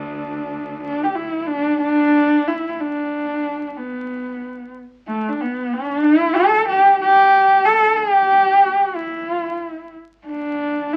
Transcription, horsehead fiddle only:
0.00 0.79 D4 medium
0.81 1.05 D4 medium
1.04 1.16 G4 medium
1.15 1.48 E4 medium
1.47 1.79 D4 loud
1.81 2.49 D4 loud
2.47 2.69 E4 medium
2.69 2.82 E4 medium
2.80 3.67 D4 medium
3.67 3.78 D4 medium
3.76 4.73 B3 medium
5.08 5.30 A3 medium
5.29 5.42 D4 medium
5.41 5.74 B3 medium
5.73 6.05 D4 loud
6.03 6.37 E4 loud
6.35 6.68 A4 loud
6.68 6.98 G4 loud
7.01 7.67 G4 loud
7.65 7.98 A4 loud
7.96 8.97 G4 loud
8.95 9.93 E4 medium
10.26 10.94 D4 medium
10.93 10.97 E4 medium

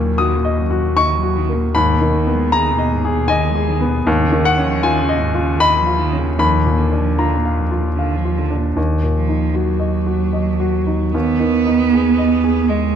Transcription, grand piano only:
0.00 1.71 D#2 medium
0.00 1.77 A#2 medium
0.00 0.35 A#3 medium
0.00 0.15 C#6 medium
0.18 0.60 F#4 medium
0.18 0.92 D#6 medium
0.45 0.86 D#5 medium
0.71 1.12 F#4 medium
0.97 1.39 D#5 medium
0.97 1.71 C#6 loud
1.23 1.65 F#4 medium
1.49 1.75 A#3 medium
1.75 4.03 D#2 medium
1.75 2.48 B5 loud
2.01 2.42 D#3 medium
2.27 2.68 B3 medium
2.52 2.94 G#4 medium
2.52 3.26 A#5 loud
2.78 3.20 D#5 medium
3.05 3.46 G#4 medium
3.28 3.71 D#5 medium
3.28 4.02 G#5 loud
3.55 3.97 G#4 medium
3.81 4.07 B3 medium
4.07 6.35 D#2 loud
4.32 4.73 D#3 medium
4.45 4.81 F#5 loud
4.58 4.99 C#4 medium
4.83 5.24 F4 medium
4.83 5.56 G#5 loud
5.09 5.50 D#5 medium
5.34 5.76 F4 medium
5.60 6.02 D#5 medium
5.60 6.35 B5 loud
5.87 6.28 F4 medium
6.12 6.39 C#4 medium
6.39 8.73 D#2 medium
6.39 7.14 B5 loud
6.65 7.08 A#2 medium
6.92 7.34 D4 medium
7.18 7.61 F4 medium
7.18 8.34 A#5 medium
7.45 7.88 F5 medium
7.71 8.14 F4 medium
7.99 8.41 F5 medium
8.25 8.67 F4 medium
8.50 8.77 D4 medium
8.76 11.10 D#2 medium
9.03 9.45 A#2 soft
9.29 9.71 D#4 soft
9.55 9.96 F#4 soft
9.79 10.22 D#5 soft
10.07 10.49 F#4 soft
10.33 10.76 D#5 soft
10.60 11.03 F#4 medium
10.87 11.14 D#4 soft
11.14 12.96 D#2 medium
11.40 11.82 D#3 medium
11.66 12.08 D#4 medium
11.93 12.34 G#4 medium
12.18 12.59 D#5 medium
12.44 12.85 G#4 medium
12.69 12.96 D#5 medium

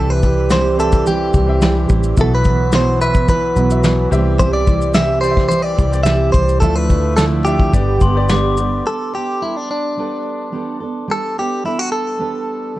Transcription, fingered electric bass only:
0.00 1.30 C2 medium
1.34 1.86 C2 medium
1.90 2.15 A1 medium
2.17 3.52 B1 loud
3.56 4.08 B1 loud
4.12 5.74 C2 medium
5.79 6.30 C2 medium
6.34 6.60 C2 medium
6.62 7.69 D2 medium
7.73 7.99 G1 loud
8.01 8.81 G1 medium

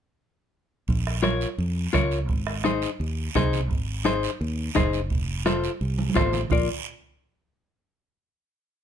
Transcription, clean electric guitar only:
1.23 1.48 F4 medium
1.23 1.48 A#4 medium
1.23 1.48 C#5 medium
1.93 2.18 F4 medium
1.93 2.19 A#4 medium
1.93 2.19 C#5 medium
2.64 2.89 D#4 medium
2.64 2.89 G#4 medium
2.64 2.89 C5 medium
3.35 3.60 D#4 medium
3.35 3.60 G#4 medium
3.35 3.60 C5 medium
4.05 4.30 D#4 medium
4.05 4.30 G#4 medium
4.05 4.30 C5 medium
4.75 5.00 D#4 medium
4.75 5.00 G#4 medium
4.75 5.00 C5 medium
5.46 5.70 F4 medium
5.46 5.71 A4 medium
5.46 5.71 C5 medium
6.16 6.40 F4 medium
6.16 6.41 A4 medium
6.16 6.41 C5 medium
6.52 6.68 F4 medium
6.52 6.68 A#4 medium
6.52 6.68 D5 medium

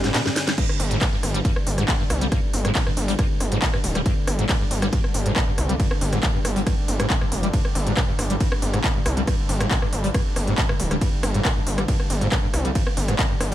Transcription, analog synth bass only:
0.00 0.10 G1 medium
0.80 0.97 G1 loud
1.23 1.41 G1 loud
1.67 1.84 G1 medium
2.10 2.28 C2 medium
2.54 2.71 G1 loud
2.97 3.15 G1 medium
3.41 3.58 G1 medium
3.84 4.02 D1 loud
4.27 4.45 G1 loud
4.71 4.89 G1 loud
5.14 5.32 G1 medium
5.58 5.76 C2 medium
6.01 6.19 G1 loud
6.45 6.62 G1 loud
6.88 7.06 G1 medium
7.32 7.49 F1 medium
7.75 7.93 G1 loud
8.19 8.36 G1 loud
8.62 8.80 G1 medium
9.06 9.23 C2 medium
9.49 9.67 G1 loud
9.93 10.10 G1 loud
10.36 10.54 G1 medium
10.80 10.97 D1 loud
11.23 11.41 G1 loud
11.67 11.84 G1 loud
12.10 12.28 G1 medium
12.54 12.71 C2 medium
12.97 13.15 G1 loud
13.41 13.54 G1 loud

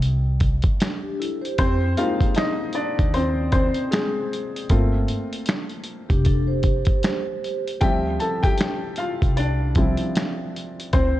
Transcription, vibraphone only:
1.03 1.18 D4 medium
1.03 1.18 G4 medium
1.19 1.42 E4 medium
1.19 1.41 A4 medium
1.41 1.79 G4 medium
1.41 1.79 C5 medium
6.09 6.24 D4 medium
6.09 6.25 G4 medium
6.25 6.47 D4 medium
6.25 6.47 A4 medium
6.48 7.61 G4 medium
6.48 7.61 C5 medium

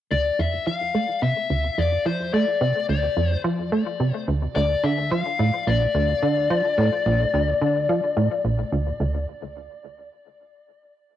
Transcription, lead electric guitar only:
0.11 0.40 D5 medium
0.39 0.67 E5 medium
0.67 1.23 F5 loud
1.23 1.80 E5 medium
1.78 2.06 D5 medium
2.06 2.33 C5 medium
2.34 2.85 D5 medium
2.89 3.29 D5 medium
3.29 3.41 C5 medium
4.56 4.84 D5 medium
4.84 5.11 E5 medium
5.12 5.69 F5 loud
5.67 8.41 D5 medium

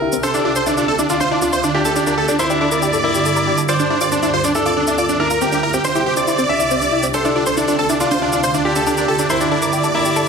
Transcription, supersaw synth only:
0.23 0.31 C5 medium
0.34 0.42 D4 medium
0.45 0.53 D4 medium
0.56 0.64 C5 medium
0.67 0.74 D4 medium
0.77 0.85 D4 medium
0.88 0.96 A4 medium
0.99 1.07 D4 medium
1.10 1.18 D4 medium
1.21 1.28 C5 medium
1.31 1.39 D4 medium
1.42 1.50 D4 medium
1.53 1.61 C5 loud
1.64 1.71 D4 medium
1.75 1.82 D4 medium
1.85 1.93 A4 loud
1.96 2.04 D4 medium
2.07 2.15 D4 medium
2.18 2.25 A4 medium
2.28 2.36 D4 medium
2.39 2.47 C5 medium
2.50 2.58 D4 medium
2.61 2.69 D4 medium
2.72 3.60 D5 loud
3.69 3.76 D5 loud
3.80 3.87 D4 medium
3.90 3.98 D4 medium
4.01 4.09 D5 medium
4.12 4.20 D4 medium
4.23 4.31 D4 medium
4.34 4.41 C5 medium
4.44 4.52 D4 medium
4.55 4.63 D4 medium
4.66 4.74 D5 medium
4.77 4.84 D4 medium
4.88 4.95 D4 medium
4.98 5.06 D5 medium
5.09 5.17 D4 medium
5.20 5.28 D4 medium
5.31 5.38 A#4 medium
5.42 5.49 G4 medium
5.52 5.60 G4 medium
5.63 5.71 A#4 medium
5.74 5.82 G4 medium
5.85 5.92 C5 medium
5.96 6.03 G4 medium
6.06 6.14 G4 medium
6.17 7.05 D5 loud
7.14 7.22 C5 loud
7.25 7.33 D4 medium
7.36 7.43 D4 medium
7.46 7.54 C5 medium
7.57 7.65 D4 medium
7.68 7.76 D4 medium
7.79 7.87 A4 medium
7.90 7.97 D4 medium
8.00 8.08 D4 medium
8.11 8.19 C5 medium
8.22 8.30 D4 medium
8.33 8.41 D4 medium
8.44 8.51 C5 medium
8.54 8.62 D4 medium
8.65 8.73 D4 medium
8.76 8.84 A4 medium
8.87 8.95 D4 medium
8.98 9.05 D4 medium
9.08 9.16 A4 medium
9.19 9.27 D4 medium
9.30 9.38 C5 loud
9.41 9.48 D4 medium
9.51 9.59 D4 medium
9.62 10.28 D5 loud

